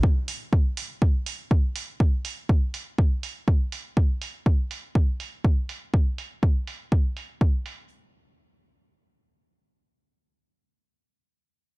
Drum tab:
HH |-o-o-o-o|-o-o-o-o|-o-o-o-o|-o-o-o-o|
BD |o-o-o-o-|o-o-o-o-|o-o-o-o-|o-o-o-o-|

HH |--------|--------|
BD |--------|--------|